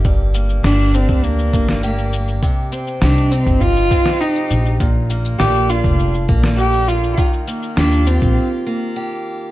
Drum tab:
SH |x-xxxxxxxxxxxxxx|x-xxxxxxxxxxxxxx|x-xxxxxxxx-xxxxx|xxxxxxxx--------|
SD |----o------o----|----o------o----|----o------o----|----o-----------|
BD |o------o--o-----|o------oo-o-----|o------o--o-----|o------o--------|